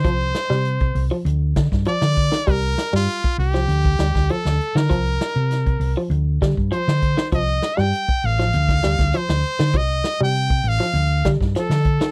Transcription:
<<
  \new Staff \with { instrumentName = "Trumpet" } { \time 4/4 \key c \dorian \tempo 4 = 99 c''4.~ c''16 r4 r16 d''4 | bes'8. f'8. g'4. a'8. bes'16~ | bes'4.~ bes'16 r4 r16 c''4 | ees''8. g''8. f''4. c''4 |
ees''8. g''8. f''4 r8 a'4 | }
  \new Staff \with { instrumentName = "Clean electric guitar" } { \clef bass \time 4/4 \key c \dorian f8 r16 g8 r8 f8 r8. f8 r16 ees16 | g8 r16 g8 r8 f8 r16 g8 f8 r16 ees16 | f8 r4 r16 f8 r16 g8 f8 r16 ees16 | f8 r16 g8 r8 f8 r16 g8 f8 r16 ees16 |
r8. g8 r8 f8 r16 g8 f8 r16 ees16 | }
  \new Staff \with { instrumentName = "Fingered electric bass" } { \clef bass \time 4/4 \key c \dorian c,8 r16 c8. c,16 r16 d,8 d16 g,16 r16 d8 r16 | c,8 r16 g,16 r8 c,8 d,8 d,16 d,16 r16 d,16 r16 d16 | c,8 r16 c8. c,16 r16 d,8 d16 g,16 r16 d8 r16 | c,8 r16 g,16 r8 a,,8 d,8 d,16 d,16 r16 d,16 r16 d16 |
c,8 r16 c8. a,,16 r16 d,8 d16 g,16 r16 d8 r16 | }
  \new DrumStaff \with { instrumentName = "Drums" } \drummode { \time 4/4 <hh bd>16 hh16 <hh sn>16 sn16 hh16 <hh bd>16 hho8 hh8 <hh bd sn>16 <bd sn>16 hh16 <hh sn>16 <hh bd>16 <hh sn>16 | <hh bd>16 hh16 <hh sn>16 sn16 hh16 bd16 hho16 <hh sn>16 hh16 <hh bd>16 <hh sn>16 <hh bd sn>16 hh16 sn16 hh16 <hh sn>16 | <hh bd>16 hh16 <hh sn>8 <hh sn>16 <hh bd>16 hho8 hh8 <hh bd sn>16 bd16 hh16 <hh sn>16 <hh bd>16 <hh sn>16 | <hh bd>16 hh16 <hh sn>16 sn16 hh16 bd16 hho16 <hh sn>16 hh16 <hh bd sn>16 <hh sn>16 <hh bd sn>16 hh16 sn16 hh16 <hh sn>16 |
<hh bd>16 hh16 <hh sn>8 hh16 <hh bd>16 hho16 sn16 hh8 <hh bd sn>16 <bd sn>16 <hh sn>16 <hh sn>16 <hh bd>16 <hh sn>16 | }
>>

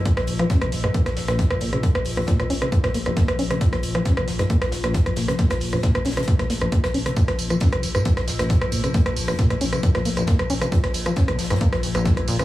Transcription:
<<
  \new Staff \with { instrumentName = "Synth drone" } { \clef bass \time 4/4 \key bes \minor \tempo 4 = 135 <bes, f>1~ | <bes, f>1~ | <bes, f>1~ | <bes, f>1 |
<bes, f>1~ | <bes, f>1~ | <bes, f>1 | }
  \new Staff \with { instrumentName = "Acid bass" } { \clef bass \time 4/4 \key bes \minor bes,16 r8 f16 des'16 bes,16 r16 aes,16 bes16 r8 bes,,8 bes,16 bes,16 des16 | bes16 r8 bes,,16 bes,16 bes,16 des'16 des16 bes,16 bes,16 bes16 bes,,16 bes16 r16 des'16 des16 | bes,16 r8 f16 des'16 bes,16 r16 aes,16 bes16 r8 bes,,8 bes,16 bes,16 des16 | bes16 r8 bes,,16 bes,16 bes,16 des'16 des16 bes,16 bes,16 bes16 bes,,16 bes16 r16 des'16 des16 |
bes,16 r8 f16 des'16 bes,16 r16 aes,16 bes16 r8 bes,,8 bes,16 bes,16 des16 | bes16 r8 bes,,16 bes,16 bes,16 des'16 des16 bes,16 bes,16 bes16 bes,,16 bes16 r16 des'16 des16 | bes,16 r8 f16 des'16 bes,16 r16 aes,16 bes16 r8 bes,,8 bes,16 bes,16 des16 | }
  \new Staff \with { instrumentName = "Sub bass" } { \clef bass \time 4/4 \key bes \minor r16 bes,,16 bes,,16 r8 bes,,16 bes,,16 r8 bes,,16 bes,,16 r8 bes,,16 bes,,16 r16 | r16 bes,,16 bes,,16 r8 bes,,16 bes,,16 r8 bes,,16 bes,,16 r8 bes,,16 bes,,16 r16 | r16 bes,,16 bes,,16 r8 bes,,16 bes,,16 r8 bes,,16 bes,,16 r8 bes,,16 bes,,16 r16 | r16 bes,,16 bes,,16 r8 bes,,16 bes,,16 r8 bes,,16 bes,,16 r8 bes,,16 bes,,16 r16 |
r16 bes,,16 bes,,16 r8 bes,,16 bes,,16 r8 bes,,16 bes,,16 r8 bes,,16 bes,,16 r16 | r16 bes,,16 bes,,16 r8 bes,,16 bes,,16 r8 bes,,16 bes,,16 r8 bes,,16 bes,,16 r16 | r16 bes,,16 bes,,16 r8 bes,,16 bes,,16 r8 bes,,16 bes,,16 r8 bes,,16 bes,,16 r16 | }
  \new DrumStaff \with { instrumentName = "Drums" } \drummode { \time 4/4 <hh bd>16 <hh ss sn>16 <hh hho>16 <hh ss>16 <hh bd sn>16 <hh ss>16 <hh hho>16 <hh ss>16 <hh bd>16 <hh ss sn>16 <hh hho sn>16 <hh ss sn>16 <hh bd sn>16 <hh ss>16 <hh hho>16 <hh ss>16 | <hh bd>16 <hh ss>16 hho16 <hh ss>16 <hh bd sn>16 <hh ss>16 <hh hho>16 <hh ss>16 <hh bd>16 <hh ss sn>16 <hh hho sn>16 <hh ss>16 <hh bd sn>16 <hh ss>16 <hh hho>16 <hh ss>16 | <hh bd>16 <hh ss sn>16 <hh hho>16 <hh ss>16 <hh bd sn>16 <hh ss>16 <hh hho sn>16 <hh ss sn>16 <hh bd>16 <hh ss sn>16 <hh hho sn>16 <hh ss sn>16 <hh bd sn>16 <hh ss>16 <hh hho sn>16 <hh ss sn>16 | <hh bd sn>16 <hh ss sn>16 hho16 <hh ss>16 <hh bd sn>16 <hh ss>16 <hh hho sn>32 <hh sn>32 <hh ss sn>32 <hh sn>32 <hh bd>16 <hh ss sn>16 <hh hho sn>16 <hh ss>16 <hh bd>16 <hh ss sn>16 hho16 <hh ss>16 |
<hh bd tamb>16 <hh ss sn>16 <hh hho tamb>16 <hh ss tamb>16 <hh bd sn tamb>16 <hh ss>16 <hh hho tamb>16 <hh ss tamb>16 <hh bd tamb>16 <hh ss sn>16 <hh hho sn tamb>16 <hh ss sn tamb>16 <hh bd sn tamb>16 <hh ss>16 <hh hho tamb>16 <hh ss tamb>16 | <hh bd tamb>16 <hh ss>16 <hho tamb>16 <hh ss tamb>16 <hh bd sn tamb>16 <hh ss>16 <hh hho tamb>16 <hh ss tamb>16 <hh bd tamb>16 <hh ss sn>16 <hh hho sn tamb>16 <hh ss tamb>16 <hh bd sn tamb>16 <hh ss>16 <hh hho tamb>16 <hh ss tamb>16 | <hh bd tamb>16 <hh ss sn>16 <hh hho tamb>16 <hh ss tamb>16 <hh bd sn tamb>16 <hh ss>16 <hh hho sn tamb>32 <hh sn>32 <hh ss sn tamb>32 <hh sn>32 <hh bd tamb>16 <hh ss sn>16 <hh hho tamb>16 <hh ss sn tamb>16 <hh bd sn tamb>16 <hh ss>16 <hh hho tamb>16 <hh ss tamb>16 | }
>>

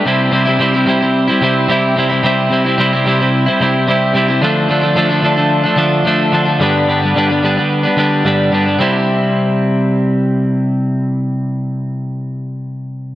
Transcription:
\new Staff \with { instrumentName = "Clean electric guitar" } { \time 4/4 \key c \major \tempo 4 = 110 <c g c' e'>8 <c g c' e'>16 <g c' e'>16 <c g c' e'>16 <g c' e'>16 <c g c' e'>16 <g c' e'>8 <g c' e'>16 <c g c' e'>8 <c g c' e'>8 <c g c' e'>16 <g c' e'>16 | <c g c' e'>8 <c g c' e'>16 <g c' e'>16 <c g c' e'>16 <g c' e'>16 <c g c' e'>16 <g c' e'>8 <g c' e'>16 <c g c' e'>8 <c g c' e'>8 <c g c' e'>16 <g c' e'>16 | <d f a d'>8 <d f a d'>16 <f a d'>16 <d f a d'>16 <f a d'>16 <d f a d'>16 <f a d'>8 <f a d'>16 <d f a d'>8 <d f a d'>8 <d f a d'>16 <f a d'>16 | <g, d g b d'>8 <d g b d'>16 <g b d'>16 <g, d g b d'>16 <g b d'>16 <d g b d'>16 <g b d'>8 <g b d'>16 <d g b d'>8 <g, d g b d'>8 <d g b d'>16 <g b d'>16 |
<c g c' e'>1~ | <c g c' e'>1 | }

